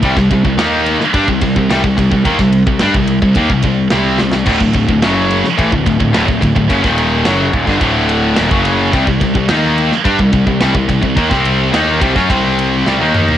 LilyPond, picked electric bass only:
\new Staff \with { instrumentName = "Picked electric bass" } { \clef bass \time 4/4 \tempo 4 = 108 c,16 c,16 c,16 c,16 ees,8. r16 g,16 c,16 c,16 c,16 c,16 c,16 c,16 c,16 | ees,16 c,8 c,16 g,16 c,8 c,16 ees,16 c,16 c,8 c,8 c,16 c,16 | d,,16 d,,16 d,,16 d,,16 fis,,8. r16 a,,16 d,,16 d,,16 d,,16 d,,16 d,,16 d,,16 d,,16 | fis,,16 ees,,8. fis,,8 ees,,16 g,,16 d,,4 ees,,16 fis,,8. |
c,16 c,16 c,16 c,16 ees,8. r16 g,16 c,16 c,16 c,16 c,16 c,16 c,16 c,16 | ees,16 c,8. ees,8 c,16 fis,16 c,4 c,16 ees,8. | }